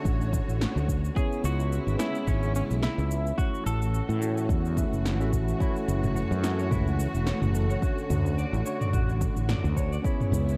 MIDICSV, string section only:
0, 0, Header, 1, 2, 480
1, 0, Start_track
1, 0, Key_signature, 3, "minor"
1, 0, Tempo, 555556
1, 1004, Time_signature, 4, 2, 24, 8
1, 9134, End_track
2, 0, Start_track
2, 0, Title_t, "String section"
2, 0, Program_c, 0, 48
2, 0, Note_on_c, 0, 50, 75
2, 0, Note_on_c, 0, 57, 69
2, 0, Note_on_c, 0, 66, 83
2, 0, Note_on_c, 0, 73, 69
2, 961, Note_off_c, 0, 66, 0
2, 985, Note_off_c, 0, 57, 0
2, 986, Note_off_c, 0, 50, 0
2, 986, Note_off_c, 0, 73, 0
2, 1011, Note_on_c, 0, 59, 71
2, 1013, Note_on_c, 0, 49, 76
2, 1014, Note_on_c, 0, 64, 86
2, 1016, Note_on_c, 0, 56, 73
2, 2908, Note_off_c, 0, 59, 0
2, 2909, Note_off_c, 0, 49, 0
2, 2910, Note_off_c, 0, 64, 0
2, 2911, Note_off_c, 0, 56, 0
2, 2929, Note_on_c, 0, 57, 71
2, 2929, Note_on_c, 0, 66, 85
2, 2931, Note_on_c, 0, 52, 81
2, 6733, Note_off_c, 0, 52, 0
2, 6756, Note_on_c, 0, 50, 76
2, 8652, Note_off_c, 0, 57, 0
2, 8652, Note_off_c, 0, 66, 0
2, 8661, Note_off_c, 0, 50, 0
2, 8673, Note_on_c, 0, 49, 81
2, 8673, Note_on_c, 0, 59, 74
2, 8674, Note_on_c, 0, 56, 69
2, 8676, Note_on_c, 0, 64, 91
2, 9134, Note_off_c, 0, 49, 0
2, 9134, Note_off_c, 0, 56, 0
2, 9134, Note_off_c, 0, 59, 0
2, 9134, Note_off_c, 0, 64, 0
2, 9134, End_track
0, 0, End_of_file